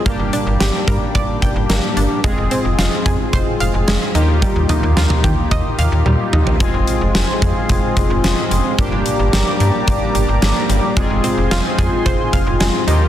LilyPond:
<<
  \new Staff \with { instrumentName = "Analog synth pad" } { \time 4/4 \key f \dorian \tempo 4 = 110 r1 | r1 | r1 | <f' c'' aes'' c'''>1 |
<g' d'' bes'' d'''>1 | <f' c'' aes'' c'''>2.~ <f' c'' aes'' c'''>8 <f' ees'' g'' bes''>8 | }
  \new Staff \with { instrumentName = "Synth pluck" } { \time 4/4 \key f \dorian bes8 d'8 g'8 bes'8 d''8 g''8 bes8 d'8 | aes8 c'8 f'8 aes'8 c''8 f''8 aes8 ees'8 | g8 ees'8 f'8 g'8 ees''8 f''8 g8 ees'8 | r1 |
r1 | aes8 c'8 f'8 aes'8 c''8 f''8 aes8 ees'8 | }
  \new Staff \with { instrumentName = "Analog polysynth" } { \time 4/4 \key f \dorian <g bes d' g'>1 | <aes c' f' aes'>2.~ <aes c' f' aes'>8 <bes ees' f' g'>8~ | <bes ees' f' g'>1 | <aes c' f' aes'>1 |
<g bes d' g'>1 | <aes c' f' aes'>2.~ <aes c' f' aes'>8 <bes ees' f' g'>8 | }
  \new Staff \with { instrumentName = "FM bass" } { \clef bass \time 4/4 \key f \dorian g,,16 g,,16 r16 g,,16 g,,16 r16 g,16 r16 g,,16 r16 g,,16 g,,16 g,,16 r16 g,,16 r16 | f,,16 f,,16 r16 f,,16 f,,16 r16 f,16 r16 f,,16 r16 f,,16 f,,16 f,,16 r16 ees,8~ | ees,16 ees,16 r16 ees,16 ees,16 r16 ees16 r16 ees,16 r16 ees,16 ees,16 ees,16 r16 ees,16 r16 | f,,16 f,,16 r16 f,,16 f,,16 r16 f,16 r16 f,,16 r16 f,,16 f,,16 f,,16 r16 f,,16 r16 |
g,,16 g,,16 r16 g,,16 g,,16 r16 g,16 r16 g,,16 r16 g,,16 g,,16 g,,16 r16 g,,16 r16 | f,,16 f,,16 r16 f,,16 f,,16 r16 f,16 r16 f,,16 r16 f,,16 f,,16 f,,16 r16 ees,8 | }
  \new DrumStaff \with { instrumentName = "Drums" } \drummode { \time 4/4 <hh bd>8 hh8 <hh sn>8 <hh bd>8 <hh bd>8 <hh bd>8 <hh sn>8 hh8 | <hh bd>8 hh8 <hh sn>8 <hh bd>8 <hh bd>8 hh8 <hh sn>8 hh8 | <hh bd>8 <hh toml>8 <hh sn>16 toml16 <hh bd>8 <hh bd>8 hh8 tommh8 toml16 tomfh16 | <hh bd>8 hh8 <hh sn>8 <hh bd>8 <hh bd>8 <hh bd>8 <hh sn>8 hh8 |
<hh bd>8 hh8 <hh sn>8 hh8 <hh bd>8 hh8 <hh sn>8 hh8 | <hh bd>8 hh8 <hh sn>8 <hh bd>8 <hh bd>8 <hh bd>8 <hh sn>8 hh8 | }
>>